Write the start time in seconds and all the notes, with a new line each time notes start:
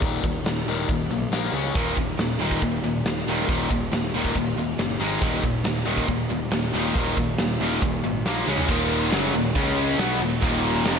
0.02 D#1 D#2 A#2 D#3, kick, open hi-hat
0.23 D#1 D#2 A#2, kick
0.45 D#1 D#2 A#2, snare, open hi-hat
0.67 D#1 D#2 A#2 D#3
0.89 D#1 D#2 A#2, kick, open hi-hat
1.10 B1 D#2 A#2
1.31 A#1 A#2 F3 A#3, snare, open hi-hat
1.53 C#2 C#3 G#3 C#4
1.75 D#1 D#2 A#2 D#3, kick, open hi-hat
1.96 D#1 D#2 A#2, kick
2.18 D#1 D#2 A#2, snare, open hi-hat
2.40 D#1 D#2 A#2 D#3
2.51 kick
2.62 D#1 D#2 A#2, kick, open hi-hat
2.83 D#1 D#2 A#2
3.05 D#1 D#2 A#2, snare, open hi-hat
3.27 D#1 D#2 A#2 D#3
3.48 D#1 D#2 A#2 D#3, kick, open hi-hat
3.70 D#1 D#2 A#2, kick
3.92 D#1 D#2 A#2, snare, open hi-hat
4.14 D#1 D#2 A#2 D#3
4.25 kick
4.35 D#1 D#2 A#2, kick, open hi-hat
4.57 D#1 D#2 A#2
4.78 F#1 D#2 A#2, snare, open hi-hat
5.00 G#1 G#2 D#3 G#3
5.21 D#1 D#2 A#2 D#3, kick, open hi-hat
5.43 D#1 D#2 A#2, kick
5.64 D#1 D#2 A#2, snare, open hi-hat
5.85 D#1 D#2 A#2 D#3
5.97 kick
6.07 D#1 D#2 A#2, kick, open hi-hat
6.30 D#1 D#2 A#2
6.51 D#1 D#2 A#2, snare, open hi-hat
6.74 D#1 D#2 A#2 D#3, snare
6.95 D#1 D#2 A#2 D#3, kick, open hi-hat
7.07 snare
7.17 D#1 D#2 A#2, kick
7.38 D#1 D#2 A#2, snare, open hi-hat
7.61 D#1 D#2 A#2 D#3
7.81 D#1 D#2 A#2, kick, open hi-hat
8.04 G#1 D#2 A#2
8.25 A#1 A#2 F3 A#3, snare, open hi-hat
8.48 C#2 C#3 G#3 C#4, snare
8.58 floor tom
8.68 D#1 D#2 A#2 D#3, kick, crash
8.91 ride
9.12 F#1 F#2 C#3 F#3, snare, ride
9.34 D#1 D#2 A#2, ride
9.55 C#2 C#3 G#3 C#4, kick, ride
9.77 ride
9.98 B1 B2 F#3 B3, snare, ride
10.20 D#1 D#2 A#2, ride
10.42 D#1 D#2 A#2 D#3, kick, ride
10.64 ride
10.84 F1 F2 C3 F3, snare, ride